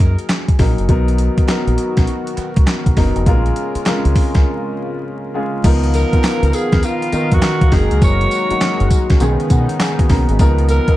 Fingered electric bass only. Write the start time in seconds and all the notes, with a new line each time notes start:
0.00 F#2
0.59 A#1
0.78 F#1
0.89 B1
1.67 A#1
1.97 B1
2.37 muted fingered electric bass stroke
2.57 C#2
2.86 B1
2.97 F#1
3.16 F1
3.26 A#1
3.75 muted fingered electric bass stroke
4.05 C#2
4.35 C#2
5.64 C#2
6.42 C#2
6.73 D#2
7.13 muted fingered electric bass stroke
7.32 F2
7.61 C#2
7.72 F#1
7.91 C#2
8.02 F#1
8.51 muted fingered electric bass stroke
8.80 F#1
9.10 C#2
9.20 B1
9.50 B2
10.10 B1
10.29 G#1
10.39 C#2